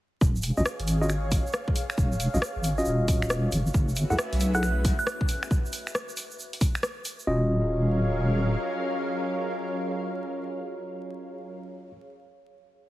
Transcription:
0.21 wobble bass D#1, analog synth pad G#4, kick, shaker
0.36 analog synth pad F5, shaker
0.42 analog synth pad C#5, open hi-hat, shaker
0.57 wobble bass A#1, tine electric piano C#4 F4 F#4 D#5, shaker
0.65 cross-stick, shaker
0.79 wobble bass G#1, open hi-hat
0.88 open hi-hat, shaker
1.01 tine electric piano C#4 F4 F#4 D#5, shaker
1.09 finger snap, shaker
1.32 kick, open hi-hat, shaker
1.47 shaker
1.53 cross-stick, shaker
1.68 kick
1.76 open hi-hat, shaker
1.90 finger snap, shaker
1.98 wobble bass D#1, kick, shaker
2.12 shaker
2.20 open hi-hat, shaker
2.34 wobble bass A#1, tine electric piano C#4 F4 F#4 D#5, shaker
2.42 cross-stick, shaker
2.56 wobble bass G#1
2.64 open hi-hat, shaker
2.78 tine electric piano C#4 F4 F#4 D#5, shaker
2.85 wobble bass D#1, shaker
3.08 kick, open hi-hat, shaker
3.22 finger snap, shaker
3.30 cross-stick, shaker
3.52 wobble bass F#1, analog synth pad F#4, open hi-hat, shaker
3.66 analog synth pad E5, shaker
3.74 wobble bass F#1, string machine A3 C#4 E4 G#4, kick, shaker
3.83 analog synth pad B4
3.89 shaker
3.96 open hi-hat, shaker
4.10 wobble bass C#2, tine electric piano E4 G#4 A4 F#5, shaker
4.19 cross-stick, shaker
4.32 wobble bass B1, open hi-hat
4.40 open hi-hat, shaker
4.54 tine electric piano E4 G#4 A4 F#5, synth bell F#6, shaker
4.63 synth bell F#6, finger snap, shaker
4.85 kick, open hi-hat, shaker
4.99 synth bell F#6, shaker
5.07 cross-stick, shaker
5.21 kick
5.29 open hi-hat, shaker
5.43 finger snap, shaker
5.51 kick, shaker
5.66 shaker
5.73 open hi-hat, shaker
5.87 finger snap, shaker
5.95 cross-stick, shaker
6.09 shaker
6.17 open hi-hat, shaker
6.31 shaker
6.39 shaker
6.53 open hi-hat
6.61 kick, open hi-hat, shaker
6.75 finger snap, shaker
6.83 cross-stick, shaker
7.05 open hi-hat, shaker
7.19 shaker
7.27 wobble bass D#1, string machine F#3 C#4 A#4 F5, tine electric piano C#4 F4 F#4 D#5, analog synth pad G#4
7.36 analog synth pad C#5
7.43 analog synth pad F5

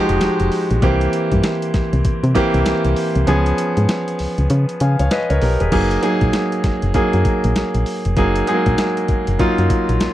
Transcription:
Already playing: grand piano F3 G#3 D#4 F#4 G4
0.09 fm bass F1, closed hi-hat
0.21 snare, closed hi-hat
0.40 fm bass F1, closed hi-hat
0.52 open hi-hat
0.71 fm bass A#1, closed hi-hat
0.82 fm bass C2, grand piano E3 A#3 C4 G4, kick, closed hi-hat
1.01 closed hi-hat
1.13 closed hi-hat
1.32 fm bass G2, kick, closed hi-hat
1.43 snare, closed hi-hat
1.62 closed hi-hat
1.74 fm bass C2, kick, snare, closed hi-hat
1.93 fm bass C2, closed hi-hat
2.05 fm bass C3, kick, closed hi-hat
2.23 fm bass C3, closed hi-hat
2.35 grand piano E3 A#3 C4 G4, kick, closed hi-hat
2.54 fm bass C2, closed hi-hat
2.66 snare, closed hi-hat
2.85 fm bass C2, closed hi-hat
2.96 open hi-hat
3.15 fm bass C2, closed hi-hat
3.27 fm bass C#2, grand piano F3 B3 C#4 G#4, closed hi-hat
3.46 closed hi-hat
3.58 closed hi-hat
3.77 fm bass G#2, closed hi-hat
3.89 snare, closed hi-hat
4.08 closed hi-hat
4.19 fm bass C#2, open hi-hat
4.38 fm bass C#2, closed hi-hat
4.50 fm bass C#3, closed hi-hat
4.69 closed hi-hat
4.80 fm bass C#3, grand piano F5 G#5, closed hi-hat
4.99 fm bass C#2, grand piano C#5 F5, closed hi-hat
5.11 grand piano B4 D#5, snare, closed hi-hat
5.30 fm bass C#2, grand piano A#4 C#5, closed hi-hat
5.42 fm bass B1, grand piano G4 A#4, open hi-hat
5.60 fm bass D#1, grand piano G#4 B4, closed hi-hat
5.72 fm bass F#1, grand piano F#3 A#3 D#4 G#4, kick, closed hi-hat, crash
5.91 closed hi-hat
6.02 grand piano F#3 A#3 D#4 G#4, closed hi-hat
6.21 fm bass A#1, kick, closed hi-hat
6.33 snare, closed hi-hat
6.52 closed hi-hat
6.64 fm bass F#1, kick, snare, closed hi-hat
6.82 fm bass F#1, closed hi-hat
6.94 fm bass F#2, grand piano F#3 A#3 D#4 G#4, kick, closed hi-hat
7.13 fm bass F#2, closed hi-hat
7.25 kick, closed hi-hat
7.44 fm bass A#1, closed hi-hat
7.56 snare, closed hi-hat
7.75 fm bass A#1, closed hi-hat
7.86 open hi-hat
8.05 fm bass F1, closed hi-hat
8.16 fm bass F#1, grand piano F#3 A#3 D#4 G#4, kick, closed hi-hat
8.36 closed hi-hat
8.47 grand piano F#3 G#3 D#4 G#4, closed hi-hat
8.54 grand piano A#3
8.66 fm bass A#1, kick, closed hi-hat
8.78 snare, closed hi-hat
8.97 closed hi-hat
9.08 fm bass F#1, kick, closed hi-hat
9.27 fm bass F#1, closed hi-hat
9.39 fm bass F#2, grand piano F#3 A#3 D#4 F4, kick, closed hi-hat
9.58 fm bass F#2, closed hi-hat
9.70 kick, closed hi-hat
9.89 fm bass A#1, closed hi-hat
10.00 snare, closed hi-hat

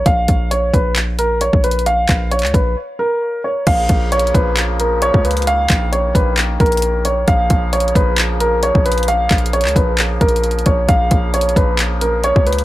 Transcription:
0.06 808-style bass A#1, grand piano F5, kick, closed hi-hat
0.28 808-style bass A#1, kick, closed hi-hat
0.51 grand piano C#5, closed hi-hat
0.74 808-style bass A#1, grand piano B4, kick, closed hi-hat
0.96 clap, closed hi-hat
1.19 grand piano A#4, closed hi-hat
1.41 grand piano C#5, closed hi-hat
1.53 808-style bass A#1, kick
1.64 grand piano B4, closed hi-hat
1.71 closed hi-hat
1.79 closed hi-hat
1.86 grand piano F5, closed hi-hat
2.09 808-style bass A#1, kick, clap, closed hi-hat
2.31 grand piano C#5, closed hi-hat
2.39 closed hi-hat
2.43 808-style bass C#2, clap, closed hi-hat
2.54 808-style bass A#1, grand piano B4, kick, closed hi-hat
2.99 grand piano A#4
3.44 grand piano C#5
3.67 808-style bass A#1, accordion C#3 F3 A#3, grand piano F5, kick, closed hi-hat, crash
3.89 808-style bass A#1, kick, closed hi-hat
4.12 grand piano C#5, closed hi-hat
4.19 closed hi-hat
4.27 closed hi-hat
4.34 808-style bass A#1, grand piano B4, kick, closed hi-hat
4.57 clap, closed hi-hat
4.80 grand piano A#4, closed hi-hat
5.02 grand piano C#5, closed hi-hat
5.14 808-style bass C#2, kick
5.25 grand piano B4, closed hi-hat
5.31 closed hi-hat
5.37 closed hi-hat
5.42 closed hi-hat
5.47 accordion D#3, grand piano F5, closed hi-hat
5.70 808-style bass A#1, kick, clap, closed hi-hat
5.92 grand piano C#5, closed hi-hat
6.15 808-style bass A#1, grand piano B4, kick, closed hi-hat
6.37 clap, closed hi-hat
6.60 808-style bass A#1, grand piano A#4, kick, closed hi-hat
6.66 closed hi-hat
6.72 closed hi-hat
6.77 closed hi-hat
6.82 closed hi-hat
7.05 grand piano C#5, closed hi-hat
7.28 808-style bass A#1, accordion C#3 F3, grand piano F5, kick, closed hi-hat
7.50 808-style bass A#1, kick, closed hi-hat
7.73 grand piano C#5, closed hi-hat
7.80 closed hi-hat
7.88 closed hi-hat
7.95 808-style bass A#1, grand piano B4, kick, closed hi-hat
8.18 clap, closed hi-hat
8.40 grand piano A#4, closed hi-hat
8.63 grand piano C#5, closed hi-hat
8.75 808-style bass A#1, kick
8.86 grand piano B4, closed hi-hat
8.92 closed hi-hat
8.98 closed hi-hat
9.03 closed hi-hat
9.08 grand piano F5, closed hi-hat
9.31 808-style bass A#1, kick, clap, closed hi-hat
9.38 closed hi-hat
9.46 closed hi-hat
9.53 grand piano C#5, closed hi-hat
9.61 closed hi-hat
9.65 808-style bass C#2, clap, closed hi-hat
9.76 808-style bass A#1, grand piano B4, kick, closed hi-hat
9.98 clap, closed hi-hat
10.21 808-style bass A#1, grand piano A#4, kick, closed hi-hat
10.29 closed hi-hat
10.36 closed hi-hat
10.44 closed hi-hat
10.51 closed hi-hat
10.59 closed hi-hat
10.66 808-style bass A#1, grand piano C#5, kick, closed hi-hat
10.89 808-style bass A#1, accordion C#3, grand piano F5, kick, closed hi-hat
11.11 808-style bass A#1, kick, closed hi-hat
11.34 grand piano C#5, closed hi-hat
11.41 closed hi-hat
11.49 closed hi-hat
11.56 808-style bass A#1, grand piano B4, kick, closed hi-hat
11.79 clap, closed hi-hat
12.01 grand piano A#4, closed hi-hat
12.24 grand piano C#5, closed hi-hat
12.36 808-style bass C#2, kick
12.47 grand piano B4, closed hi-hat
12.53 closed hi-hat
12.59 closed hi-hat

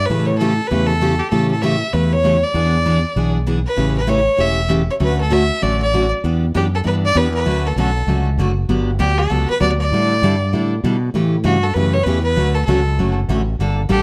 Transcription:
0.06 fretless electric bass A2, fiddle B4
0.10 steel-string acoustic guitar C#3 E3 A3 C#4 G4
0.26 fiddle C#5
0.38 steel-string acoustic guitar C#3 E3 A3 C#4 G4, fiddle A4
0.67 fretless electric bass E2, steel-string acoustic guitar C#3 E3, fiddle B4
0.71 steel-string acoustic guitar A3 C#4 G4
0.87 fiddle A4
1.01 steel-string acoustic guitar C#3 E3 A3 C#4 G4
1.19 fiddle G4
1.30 fretless electric bass A2, steel-string acoustic guitar C#3 E3 A3 C#4 G4, fiddle A4
1.51 fiddle A4
1.62 steel-string acoustic guitar C#3 E3 A3 C#4 G4, fiddle E5
1.93 fretless electric bass E2, steel-string acoustic guitar C#3 E3 A3 C#4 G4, fiddle B4
2.13 fiddle C#5
2.23 steel-string acoustic guitar C#3 E3 A3 C#4 G4
2.43 fiddle D5
2.54 fretless electric bass E2, steel-string acoustic guitar E3 B3 D4 G#4
2.85 steel-string acoustic guitar E3 B3 D4 G#4
3.16 fretless electric bass B1, steel-string acoustic guitar E3 B3 D4 G#4
3.47 steel-string acoustic guitar E3 B3 D4 G#4
3.66 fiddle B4
3.76 fretless electric bass A1, steel-string acoustic guitar C#3 E3 A3 C#4 G4
3.98 fiddle B4
4.07 steel-string acoustic guitar C#3 E3 A3 C#4 G4, fiddle C#5
4.37 fretless electric bass E1, steel-string acoustic guitar C#3 E3 A3 C#4 G4, fiddle E5
4.68 steel-string acoustic guitar C#3 E3 A3 C#4 G4
4.91 fiddle C#5
5.00 fretless electric bass D2, steel-string acoustic guitar D3 F#3 A3 C#4 F#4, fiddle B4
5.21 fiddle A4
5.30 steel-string acoustic guitar D3 F#3 A3 C#4 F#4, fiddle E5
5.61 fretless electric bass A1, steel-string acoustic guitar D3 F#3 A3 C#4 F#4, fiddle D5
5.82 fiddle D5
5.93 steel-string acoustic guitar D3 F#3 A3 C#4 F#4
6.24 fretless electric bass E2, steel-string acoustic guitar E3 B3 D4 G4
6.54 fretless electric bass F#2, steel-string acoustic guitar E3 B3 D4 G4, fiddle G4
6.75 fiddle A4
6.84 fretless electric bass G2, steel-string acoustic guitar E3 B3 D4 G4, fiddle B4
7.05 fiddle D5
7.14 fretless electric bass E2, steel-string acoustic guitar E3 B3 D4 G4, fiddle B4
7.34 fiddle B4
7.45 fretless electric bass D2, steel-string acoustic guitar D3 F#3 A3 C#4 F#4
7.66 fiddle A4
7.76 fretless electric bass B1, steel-string acoustic guitar D3 F#3 A3 C#4 F#4, fiddle A4
8.07 fretless electric bass C#2, steel-string acoustic guitar D3 F#3 A3 C#4 F#4
8.37 fretless electric bass F#1, steel-string acoustic guitar D3 F#3 A3 C#4 F#4
8.69 fretless electric bass G1, steel-string acoustic guitar D3 F#3 B3 D4 G4
8.99 fretless electric bass D2, steel-string acoustic guitar D3 F#3 B3 D4 G4, fiddle G4
9.18 fiddle A4
9.30 fretless electric bass C#2, steel-string acoustic guitar D3 F#3 B3 D4 G4
9.50 fiddle B4
9.60 fretless electric bass D2, steel-string acoustic guitar D3 F#3 B3 D4 G4, fiddle D5
9.81 fiddle D5
9.91 fretless electric bass A2, steel-string acoustic guitar D3 G3 D4 E4 A4
10.22 fretless electric bass G2, steel-string acoustic guitar D3 G3 D4 E4 A4
10.53 fretless electric bass A2, steel-string acoustic guitar D3 G3 D4 E4 A4
10.84 fretless electric bass B2, steel-string acoustic guitar D3 G3 D4 E4 A4
11.14 fretless electric bass A2, steel-string acoustic guitar C#3 E3 A3 C#4 G4
11.44 fretless electric bass G2, steel-string acoustic guitar C#3 E3 A3 C#4 G4, fiddle F#4
11.63 fiddle A4
11.74 fretless electric bass F#2, steel-string acoustic guitar C#3 E3 A3 C#4 G4, fiddle B4
11.93 fiddle C#5
12.03 fretless electric bass E2, steel-string acoustic guitar C#3 E3 A3 C#4, fiddle B4
12.07 steel-string acoustic guitar G4
12.23 fiddle B4
12.36 fretless electric bass D2, steel-string acoustic guitar D3 F#3 A3 C#4 F#4
12.54 fiddle A4
12.65 fretless electric bass C#2, steel-string acoustic guitar D3 F#3 A3 C#4 F#4, fiddle A4
12.98 fretless electric bass F#1, steel-string acoustic guitar D3 F#3 A3 C#4 F#4
13.28 fretless electric bass A1, steel-string acoustic guitar D3 F#3 A3 C#4 F#4
13.59 fretless electric bass G1, steel-string acoustic guitar D3 G3 A#3 D4 A4
13.89 fretless electric bass A1, steel-string acoustic guitar D3 G3 A#3 D4 A4, fiddle G4

